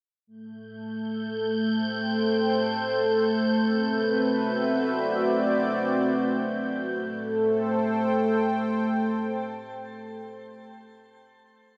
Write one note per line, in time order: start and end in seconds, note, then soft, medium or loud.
0.26 6.89 A3 medium
0.26 3.59 A3 medium
0.26 6.93 G6 medium
0.69 4.90 A4 medium
1.76 3.58 C5 medium
1.76 3.58 G5 medium
3.59 6.90 C4 medium
3.71 6.90 B4 medium
4.08 6.91 E5 medium
4.24 6.91 F#4 medium
4.85 6.91 D5 medium
6.90 10.19 A3 medium
6.90 10.20 A3 medium
7.09 10.38 A4 medium
7.27 10.56 C5 medium
7.43 10.72 G5 medium